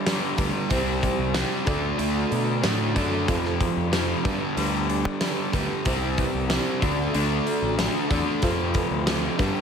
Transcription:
Already playing: G3
0.06 G2 D3 G3 D4 G4 B4, snare, open hi-hat
0.37 D2 G2 D3 G3 D4 G4 B4, kick, open hi-hat
0.69 C2 C3 G3 C4 E4 G4 C5, kick, open hi-hat
1.02 E4 G4 C5, kick, open hi-hat
1.18 C2
1.34 C3 G3 C4 E4 G4 C5, snare, open hi-hat
1.66 D2 D3 A3 D4 F#4 A4 D5, kick, open hi-hat
1.98 D2 D3 A3 D4, open hi-hat
2.30 B2 F#4 A4 D5, open hi-hat
2.63 A2 D3 A3 D4 F#4 A4 D5, snare, open hi-hat
2.95 F#2 D3 A3 D4 F#4 A4 D5, kick, open hi-hat
3.28 F2 C3 F3 F4 A4 C5, kick, open hi-hat
3.45 snare
3.60 F4 A4 C5, kick, open hi-hat
3.77 F2
3.92 F2 C3 F3 F4 A4 C5, snare, open hi-hat
4.24 G2 D3 G3 D4 G4 B4, kick, open hi-hat
4.57 D2 G2 D3 G3, open hi-hat
4.89 D4 G4 D5, open hi-hat
5.05 G3
5.21 G2 D3 G3 D4 G4 B4, snare, open hi-hat
5.53 D2 G2 D3 G3 D4 G4 B4, kick, open hi-hat
5.85 C2 C3 G3 C4 E4 G4 C5, kick, open hi-hat
6.17 E4 G4 B4, kick, open hi-hat
6.34 C2
6.49 C3 G3 C4 E4 G4 D5, snare, open hi-hat
6.80 D2 D3 A3 D4 F#4 A4 D5, kick, open hi-hat
7.13 D2 D3 A3 D4, open hi-hat
7.46 F#4 A4 D5, open hi-hat
7.62 A1
7.78 D3 A3 D4 F#4 A4 D5, snare, open hi-hat
8.10 E2 D3 A3 D4 F#4 A4 D5, kick, open hi-hat
8.42 F2 C3 F3 F4 A4 C5, kick, open hi-hat
8.74 F4 A4 B4, kick, open hi-hat
8.91 D2
9.07 F2 C3 F3 F4 A4 C5, snare, open hi-hat
9.38 G2 D3 G3 D4 G4 B4, kick, open hi-hat

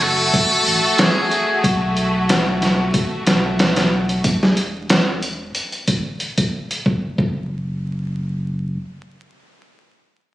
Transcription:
Already playing: F#1 A3 F#4
0.01 A4, closed hi-hat
0.34 kick, closed hi-hat
0.66 A1, closed hi-hat
0.98 G#4, snare, closed hi-hat
1.31 closed hi-hat
1.64 B1, kick, closed hi-hat
1.97 closed hi-hat
2.29 snare, closed hi-hat
2.62 snare, closed hi-hat
2.94 kick, closed hi-hat
3.26 B1, snare, closed hi-hat
3.59 snare, closed hi-hat
3.76 snare, closed hi-hat
4.09 closed hi-hat
4.24 E1, kick, closed hi-hat
4.43 snare
4.57 closed hi-hat
4.90 snare, closed hi-hat
5.23 closed hi-hat
5.55 closed hi-hat
5.72 closed hi-hat
5.88 G#1, kick, closed hi-hat
6.20 closed hi-hat
6.38 kick, closed hi-hat
6.71 closed hi-hat
6.86 F#1, kick
7.18 F#1, kick

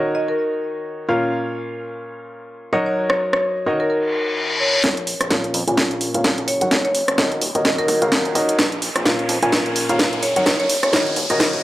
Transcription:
Already playing: D#3 D#4 F#4 A#4 C#5 D#5
0.15 D#5
0.28 A#4
1.09 A#2 C#4 F4 A#4 C#5 F5
2.73 F#3 D#4 F#4 A#4 C#5 D#5
2.86 C#5
3.10 C#5, cross-stick
3.33 C#5, cross-stick
3.66 D#3 D#4 F#4 A#4 C#5 D#5
3.80 A#4
3.90 A#4, reverse cymbal
4.60 C#5
4.74 C#5
4.84 A#1, kick, snare, closed hi-hat, riser
4.97 closed hi-hat
5.07 open hi-hat
5.21 A#1, cross-stick, closed hi-hat
5.31 A#2 C#4 F4 A#4 C#5 F5, kick, snare, closed hi-hat
5.44 closed hi-hat
5.54 F2, open hi-hat
5.67 A#1 A#2 C#4 F4 A#4 C#5 G#5, closed hi-hat
5.77 kick, snare, open hi-hat
5.91 closed hi-hat
6.01 open hi-hat
6.14 G#1 A#2 C#4 F4 A#4 C#5 F5, closed hi-hat
6.24 kick, snare, closed hi-hat
6.38 F#1, closed hi-hat
6.48 C#5, open hi-hat
6.61 F#3 D#4 F#4 A#4 C#5 F#5, closed hi-hat
6.71 F#1, kick, snare, closed hi-hat
6.85 C#5, closed hi-hat
6.95 open hi-hat
7.08 F#1, cross-stick, closed hi-hat
7.18 D#3 D#4 F#4 A#4 C#5 D#5, kick, snare, closed hi-hat
7.32 closed hi-hat
7.41 D#1, open hi-hat
7.55 D#1 D#3 D#4 F#4 A#4 C#5 D#5, closed hi-hat
7.65 D#3 F#4 A#4 C#5 D#5, kick, snare, closed hi-hat
7.78 D#3 D#4 F#4 A#4 C#5 D#5, closed hi-hat
7.88 kick, open hi-hat
8.02 C#2 D#3 D#4 F#4 A#4 C#5 F5, closed hi-hat
8.12 kick, snare, closed hi-hat
8.25 D#1, closed hi-hat
8.35 D#4 F#4 A#4 C#5 D#5, open hi-hat
8.49 closed hi-hat
8.59 A#1, kick, snare, closed hi-hat
8.72 closed hi-hat
8.82 open hi-hat
8.96 A#1, cross-stick, closed hi-hat
9.05 A#2 C#4 F4 A#4 C#5 F5, kick, snare, closed hi-hat
9.19 closed hi-hat
9.29 F2, open hi-hat
9.42 A#1 A#2 C#4 F4 A#4 C#5 G#5, closed hi-hat
9.52 kick, snare, open hi-hat
9.66 closed hi-hat
9.76 open hi-hat
9.89 G#1 A#2 C#4 F4 A#4 C#5 F5, closed hi-hat
9.99 kick, snare, closed hi-hat
10.13 F#1, closed hi-hat
10.23 C#5, open hi-hat
10.36 F#3 D#4 F#4 A#4 C#5 F#5, closed hi-hat
10.46 F#1, kick, snare, closed hi-hat
10.60 C#5, closed hi-hat
10.69 open hi-hat
10.83 F#1 C#5, cross-stick, closed hi-hat
10.93 D#3 D#4 F#4 A#4 C#5 D#5, kick, snare, closed hi-hat
11.06 closed hi-hat
11.16 D#1, open hi-hat
11.30 D#1 D#3 D#4 F#4 A#4 C#5 D#5, closed hi-hat
11.40 D#3 D#4 F#4 A#4 D#5, kick, snare, closed hi-hat
11.53 D#3 D#4 F#4 A#4 C#5 D#5, closed hi-hat

